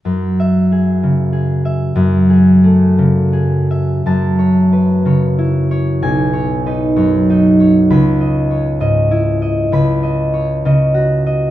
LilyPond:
<<
  \new Staff \with { instrumentName = "Harp" } { \time 6/8 \key fis \dorian \tempo 4. = 64 << { r8 e''2~ e''8~ | e''2. | a''2. | gis''2. |
b''2. | b''2. | } \\ { r2. | r2. | r8 cis''8 b'8 cis''8 e'8 cis''8~ | cis''8 cis''8 b'8 cis''8 dis'8 cis''8~ |
cis''8 dis''8 cis''8 dis''8 e'8 dis''8~ | dis''8 dis''8 cis''8 dis''8 fis'8 dis''8 | } >> }
  \new Staff \with { instrumentName = "Harp" } { \clef bass \time 6/8 \key fis \dorian fis,4 gis'8 cis8 gis'8 e''8 | fis,8 gis'8 a8 cis8 gis'8 e''8 | fis,4. cis4. | b,,4 dis'8 fis,8 dis'4 |
cis,4. gis,4. | cis,4. cis4. | }
>>